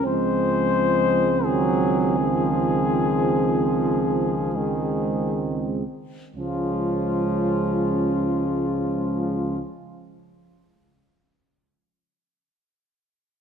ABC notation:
X:1
M:4/4
L:1/8
Q:1/4=34
K:Db
V:1 name="Flugelhorn"
c2 A4- A z | F8 |]
V:2 name="French horn section"
C6 C z | D8 |]
V:3 name="Euphonium" clef=bass
F,2 E,4 A, z | A,8 |]
V:4 name="Trombone" clef=bass
A,2 G, F,3 E, z | F,8 |]
V:5 name="Tuba" clef=bass
D,,6- D,, z | D,,8 |]